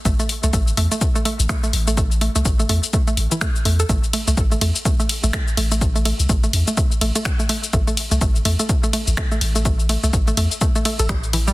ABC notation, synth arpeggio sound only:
X:1
M:4/4
L:1/16
Q:"Swing 16ths" 1/4=125
K:Am
V:1 name="Synth arpeggio sound"
A, A, z A, A, z A, A, z A, A, z A, A, z A, | A, z A, A, z A, A, z A, A, z E, A, z A, A | A, z A, A, z A, A, z A, A, z A, A, z A, A, | z A, A, z A, A, z A, A, z A, A, z A, A, z |
A, A, z A, A, z A, A, z A, A, z A, A, z A, | A, z A, A, z A, A, z A, A, A, A G, z E, G, |]